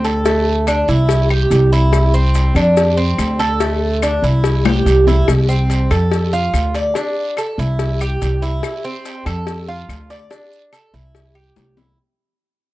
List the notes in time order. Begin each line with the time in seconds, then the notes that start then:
Already playing: D2
0.05 A4, cowbell, short guiro, maracas
0.25 A3, cowbell, long guiro, maracas
0.67 D4, cowbell, short guiro, claves, maracas
0.88 C2 E4, short guiro, maracas
1.09 cowbell, long guiro, maracas
1.30 G4, claves
1.50 C2, cowbell, short guiro, maracas
1.72 E4, short guiro, maracas
1.93 cowbell, long guiro, claves, maracas
2.14 C4, maracas
2.34 cowbell, short guiro, maracas
2.55 F2 D4, cowbell, short guiro, claves, maracas
2.77 cowbell, long guiro, maracas
2.97 C4
3.18 D2, cowbell, short guiro, claves, maracas
3.39 A4, cowbell, short guiro, maracas
3.60 A3, cowbell, long guiro, maracas
4.02 D4, cowbell, short guiro, claves, maracas
4.22 C2 E4, short guiro, maracas
4.44 cowbell, long guiro, maracas
4.65 G4, high bongo, claves
4.85 C2, cowbell, short guiro, maracas
5.07 E4, low bongo, short guiro, maracas
5.28 C2, cowbell, long guiro, claves, maracas
5.49 C4, maracas
5.70 cowbell, short guiro, maracas
5.91 F2 A4, cowbell, short guiro, claves, maracas
6.12 cowbell, long guiro, maracas
6.33 F4, maracas
6.53 D2, cowbell, short guiro, claves, maracas
6.74 D5, cowbell, short guiro, maracas
6.95 D4, cowbell, long guiro, maracas
7.37 A4, cowbell, short guiro, claves, maracas
7.58 C2 E4, short guiro, maracas
7.79 cowbell, long guiro, maracas
8.01 G4, claves, maracas
8.22 C2, cowbell, short guiro, maracas
8.42 E4, short guiro, maracas
8.63 cowbell, long guiro, claves, maracas
8.85 C4
9.05 cowbell, short guiro, maracas
9.26 F2 A4, cowbell, short guiro, claves, maracas
9.47 cowbell, long guiro, maracas
9.68 F4
9.89 D2, cowbell, short guiro, claves, maracas
10.10 D5, cowbell, short guiro, maracas
10.31 D4, cowbell, long guiro, maracas
10.53 maracas
10.73 A4, cowbell, short guiro, claves, maracas
10.94 C2 E4, short guiro, maracas
11.15 cowbell, long guiro, maracas
11.35 G4, claves
11.56 C2, cowbell, high bongo, short guiro, maracas
11.77 E4, low bongo, short guiro, maracas